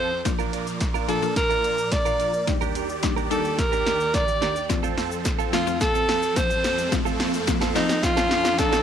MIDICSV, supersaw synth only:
0, 0, Header, 1, 2, 480
1, 0, Start_track
1, 0, Tempo, 555556
1, 219, Time_signature, 4, 2, 24, 8
1, 7627, End_track
2, 0, Start_track
2, 0, Title_t, "Supersaw synth"
2, 0, Program_c, 0, 81
2, 0, Note_on_c, 0, 41, 78
2, 0, Note_on_c, 0, 53, 75
2, 0, Note_on_c, 0, 60, 74
2, 0, Note_on_c, 0, 69, 90
2, 183, Note_off_c, 0, 69, 0
2, 184, Note_off_c, 0, 41, 0
2, 184, Note_off_c, 0, 53, 0
2, 184, Note_off_c, 0, 60, 0
2, 219, Note_on_c, 0, 53, 77
2, 219, Note_on_c, 0, 70, 91
2, 220, Note_on_c, 0, 46, 85
2, 220, Note_on_c, 0, 74, 74
2, 2120, Note_off_c, 0, 46, 0
2, 2120, Note_off_c, 0, 53, 0
2, 2120, Note_off_c, 0, 70, 0
2, 2139, Note_on_c, 0, 39, 82
2, 2139, Note_on_c, 0, 51, 78
2, 2139, Note_on_c, 0, 67, 93
2, 4025, Note_off_c, 0, 74, 0
2, 4040, Note_off_c, 0, 39, 0
2, 4040, Note_off_c, 0, 51, 0
2, 4040, Note_off_c, 0, 67, 0
2, 4058, Note_on_c, 0, 41, 87
2, 4058, Note_on_c, 0, 53, 79
2, 4058, Note_on_c, 0, 69, 96
2, 4059, Note_on_c, 0, 60, 79
2, 7627, Note_off_c, 0, 41, 0
2, 7627, Note_off_c, 0, 53, 0
2, 7627, Note_off_c, 0, 60, 0
2, 7627, Note_off_c, 0, 69, 0
2, 7627, End_track
0, 0, End_of_file